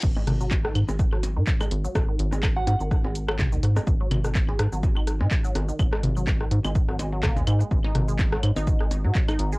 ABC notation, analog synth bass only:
X:1
M:4/4
L:1/16
Q:"Swing 16ths" 1/4=125
K:Blyd
V:1 name="Analog synth bass" clef=bass
G,,, z G,,,3 z G,, G,,,4 G,, z2 G,,, z | G,,, z G,,,3 z G,, G,,, z G,,,4 D,, G,, z | G,,, z G,,,3 z G,, G,,,4 G,, z2 G,,, z | G,,, z G,,,3 z G,, G,,, z G,,,4 D,, G,, z |
G,,, z G,,,3 z G,, G,,,4 G,, z2 G,,, z |]